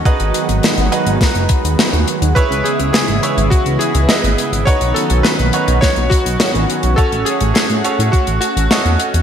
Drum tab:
HH |xxxxxxxxxxxxxxxx|xxxxxxxxxxxxxxxx|xxxxxxxxxxxxxxxx|xxxxxxxxxxxxxxxx|
SD |----o---o---o---|----o-------o---|----o---o---o---|----o-------o---|
BD |o-------o-o-----|o-------o-------|o-------o-o-----|o-------o-------|